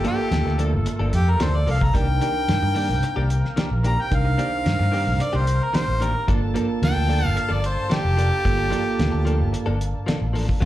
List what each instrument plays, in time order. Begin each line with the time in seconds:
Already playing: horn section A3 A#3 F4 A4
0.04 clean electric guitar F3 A#3 D4 A4, reed electric piano A#3 F4 A4, harmonica G4, closed hi-hat
0.18 muted clean electric guitar stroke
0.31 fingered electric bass D2, snare, closed hi-hat
0.46 fingered electric bass D2, muted clean electric guitar stroke, snare
0.58 clean electric guitar F3 A#3 D4 A4, closed hi-hat
0.72 fingered electric bass G1, muted clean electric guitar stroke
0.86 muted clean electric guitar stroke, closed hi-hat
0.99 fingered electric bass G1, clean electric guitar F3 A#3 D4 A4
1.13 fingered electric bass F2, harmonica G4, muted clean electric guitar stroke, closed hi-hat
1.30 harmonica A#4
1.40 fingered electric bass D2, clean electric guitar F3 A#3 D4 A4, harmonica C5, snare, closed hi-hat
1.54 harmonica D5, muted clean electric guitar stroke
1.67 fingered electric bass C2, clean electric guitar F3 A#3 D4 A4, open hi-hat
1.71 harmonica F5
1.81 harmonica A#5, muted clean electric guitar stroke, kick
1.94 fingered electric bass C2, clean electric guitar D#3 A#3 D4 G4, horn section A#3 C4 A#4, reed electric piano D4 D#4 A#4, harmonica G5, kick, closed hi-hat
2.08 muted clean electric guitar stroke
2.21 clean electric guitar D#3 A#3 D4 G4, reed electric piano D4 D#4 A#4, closed hi-hat
2.35 muted clean electric guitar stroke
2.48 fingered electric bass G2, snare, closed hi-hat
2.62 fingered electric bass G2, muted clean electric guitar stroke
2.75 clean electric guitar D#3 A#3 D4 G4, open hi-hat
2.89 fingered electric bass C2, muted clean electric guitar stroke
3.03 muted clean electric guitar stroke, closed hi-hat
3.16 fingered electric bass C2, clean electric guitar D#3 A#3 D4 G4
3.30 muted clean electric guitar stroke, closed hi-hat
3.45 snare
3.56 clean electric guitar D#3 A#3 D4 G4, snare, closed hi-hat
3.70 fingered electric bass A#1, muted clean electric guitar stroke
3.83 clean electric guitar D#3 A#3 D4 G4, harmonica A#5, closed hi-hat
3.98 harmonica G5, muted clean electric guitar stroke
4.11 fingered electric bass C2, reed electric piano D4 D#4 A#4, kick, closed hi-hat
4.15 harmonica F5
4.25 muted clean electric guitar stroke
4.38 clean electric guitar D#3 A#3 D4 G4, reed electric piano D4 D#4 C5, closed hi-hat
4.52 muted clean electric guitar stroke
4.66 fingered electric bass G2, snare, closed hi-hat
4.79 fingered electric bass G2, muted clean electric guitar stroke, snare
4.92 clean electric guitar D#3 A#3 D4 G4, open hi-hat
5.06 fingered electric bass C2, muted clean electric guitar stroke
5.19 harmonica D5, muted clean electric guitar stroke, closed hi-hat
5.33 fingered electric bass C2, clean electric guitar D#3 A#3 D4 G4, harmonica C5
5.46 muted clean electric guitar stroke, closed hi-hat
5.63 harmonica A#4
5.73 clean electric guitar D#3 A#3 D4 G4, harmonica C5, snare, closed hi-hat
5.87 fingered electric bass A1, muted clean electric guitar stroke
6.00 clean electric guitar D#3 A#3 D4 G4, harmonica A#4, closed hi-hat
6.14 muted clean electric guitar stroke
6.27 fingered electric bass G1, clean electric guitar F3 A#3 D4 A4, reed electric piano A#3 F4 A4, horn section A#3 D4 A4 A5, kick, closed hi-hat
6.42 muted clean electric guitar stroke
6.54 clean electric guitar F3 A#3 D4 A4, reed electric piano A#3 F4 A#4, closed hi-hat
6.68 muted clean electric guitar stroke
6.82 fingered electric bass D2, harmonica G5, snare, closed hi-hat
6.95 fingered electric bass D2, muted clean electric guitar stroke
7.07 clean electric guitar F3 A#3 D4 A4, open hi-hat
7.22 fingered electric bass G1, muted clean electric guitar stroke
7.26 harmonica F5
7.35 muted clean electric guitar stroke, closed hi-hat
7.39 harmonica F5
7.49 fingered electric bass G1, clean electric guitar F3 A#3 D4 A4, harmonica D5
7.62 harmonica C5, muted clean electric guitar stroke, closed hi-hat
7.90 clean electric guitar F3 A#3 D4 A4, harmonica G4, snare, closed hi-hat
8.04 fingered electric bass F1, muted clean electric guitar stroke
8.17 clean electric guitar F3 A#3 D4 A4, closed hi-hat
8.31 muted clean electric guitar stroke
8.45 fingered electric bass G1, reed electric piano A#3 F4 A4, kick, closed hi-hat
8.58 muted clean electric guitar stroke
8.70 clean electric guitar F3 A#3 D4 A4, reed electric piano A#3 F4 A4, closed hi-hat
8.85 muted clean electric guitar stroke
8.99 fingered electric bass D2, snare, closed hi-hat
9.12 fingered electric bass D2, muted clean electric guitar stroke
9.25 clean electric guitar F3 A#3 D4 A4, closed hi-hat
9.40 fingered electric bass G1, muted clean electric guitar stroke
9.52 muted clean electric guitar stroke, closed hi-hat
9.66 fingered electric bass G1, clean electric guitar F3 A#3 D4 A4
9.80 muted clean electric guitar stroke, closed hi-hat
10.06 clean electric guitar F3 A#3 D4 A4, snare, closed hi-hat
10.21 fingered electric bass A1, muted clean electric guitar stroke
10.33 clean electric guitar F3 A#3 D4 A4, open hi-hat
10.48 muted clean electric guitar stroke, kick
10.60 clean electric guitar F#3 A3 C4 F4, horn section F#3 C4 F#4, reed electric piano C4, closed hi-hat